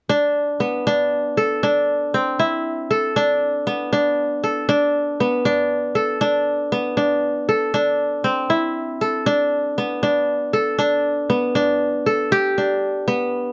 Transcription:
0.09 D4
0.60 B3
0.87 D4
1.37 A4
1.63 D4
2.14 C4
2.39 E4
2.91 A4
3.16 D4
3.67 B3
3.93 D4
4.44 A4
4.69 D4
5.20 B3
5.45 D4
5.95 A4
6.21 D4
6.72 B3
6.97 D4
7.49 A4
7.74 D4
8.24 C4
8.50 E4
9.01 A4
9.26 D4
9.78 B3
10.03 D4
10.53 A4
10.79 D4
11.30 B3
11.55 D4
12.06 A4
12.32 G4
12.58 D4
13.08 B3

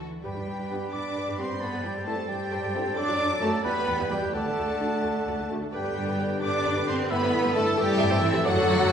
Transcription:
0.01 E3
0.23 G2 G3 G4 B4 G5 B5
0.35 G2 D4 G4
0.47 G2 B3 D4
0.59 G2 D4 G4
0.69 G2 B3 D4 G4 B4
0.92 G2 B3 D4 D5 D6
1.16 G2 G4 B4
1.28 G2 D4 G4
1.38 G2 B3 C4 D4 G4 C5 C6
1.50 G2 D4 G4
1.60 G2 B3 A4 B4 C5 A5 B5
1.73 G2 G4 A4
1.84 G2 G3 E4 G4 G5
1.95 G2 G4 A4
2.05 G2 A3 C4 E4 A4 C5 A5
2.28 G2 G3 E4 G4 G5
2.51 G2 A4 C5
2.63 G2 G4 A4
2.73 G2 C4 E4 G4 A4
2.85 G2 G4 A4
2.96 F#2 F#3 D4 A4 D5 D6
3.08 F#2 F#4
3.19 F#2 D4
3.30 F#2 F#4
3.40 F#2 A3 F#4 A4 A5
3.64 E2 G3 B3 E4 B4 G5 B5
3.87 E2 G4 B4
3.99 E2 E4 G4
4.09 E2 B2 G3 B3 E4 G4 B4 G5
4.22 E2 E4 G4
4.33 D2 D3 A3 F#4 A4 D5 F#5 A5
4.45 D2 D4 A4
4.58 D2 A3 F#4
4.69 D2 D4 A4
4.80 D2 D3 A3 D4 F#4 D5
5.04 D2 A3 F#4
5.27 D2 F#4 D5
5.38 D2 D4 A4
5.49 D2 D3 A3 D4 F#4
5.62 D2 D4 A4
5.72 G2 D3 G3 B3 D4 G4 B4 D5 G5
5.84 G2 G4 B4
5.95 G2 D4 G4
6.06 G2 G4 B4
6.18 G2 B4 D5
6.41 G2 D3 D4 G4 B4 D5 G5 D6
6.64 G2 B4 D5
6.76 G2 G4 B4
6.87 G2 C4 D4 G4 C5 C6
6.99 G2 G4 B4
7.09 G2 E3 A3 B3 E4 A4 B4 E5 B5
7.21 G2 G4 C5
7.32 G2 E4 A4
7.44 G2 G4 C5
7.55 G2 A3 A4 E5 A5
7.77 G2 C3 E3 G3 E4 G4 A4 E5 G5
7.99 G2 A4 E5
8.11 G2 G4 C5
8.22 G2 E3 E4 A4 E5
8.33 G2 G4 C5
8.44 F#2 D3 F#3 F#4 A4 D5 F#5
8.56 F#2 F#4 A4
8.67 F#2 D4 F#4
8.79 F#2 F#4 A4

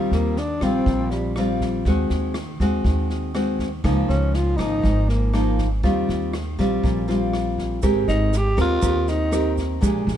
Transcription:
Already playing: D#2 D#3 G3 C4 F4
0.11 D#2 A#3, snare
0.37 D4, snare
0.61 A#1 G3 C4 F4, kick, cross-stick, snare
0.86 A#1 A#2, kick, snare
1.10 G3, snare
1.36 G3 C4 F4, cross-stick, snare
1.61 kick, snare
1.85 D#2 D#3 G#3 C4 F#4, kick, snare
2.10 D#2, snare
2.34 cross-stick, snare
2.60 D#2 G#3 C4 F#4, kick, snare
2.85 D#2 D#3, kick, snare
3.10 snare
3.34 G#3 C4 F#4, cross-stick, snare
3.59 kick, snare
3.84 C#2 C#3 F3 A#3 D#4, kick, cross-stick, snare
4.08 C#2 C#4, snare
4.34 F4, snare
4.57 G#1 F3 A#3 D#4, kick, cross-stick, snare
4.82 G#1 G#2, kick, snare
5.09 A#3, snare
5.33 F3 A#3 D#4, cross-stick, snare
5.58 kick, snare
5.83 D#2 D#3 G3 C4 F4, kick, snare
6.09 D#2, snare
6.33 cross-stick, snare
6.58 A#1 G3 C4 F4, kick, snare
6.83 A#1 A#2, kick, snare
7.08 G3 C4 F4, snare
7.33 cross-stick, snare
7.58 kick, snare
7.82 G#1 G#3 C4 G4 A#4, kick, cross-stick, snare, shaker
8.08 G#1 D#4, snare, shaker
8.33 snare, shaker
8.37 G4
8.57 D#2 C4 G4 A#4, kick, cross-stick, snare, shaker
8.61 F4
8.82 D#2 D#3 C4 G4 A#4, kick, snare, shaker
9.08 D#4, snare, shaker
9.31 C4 G4 A#4, cross-stick, snare, shaker
9.58 kick, snare, shaker
9.81 A#1 A#2 G#3 D4 G4, kick, snare, shaker
10.07 A#1, snare, shaker

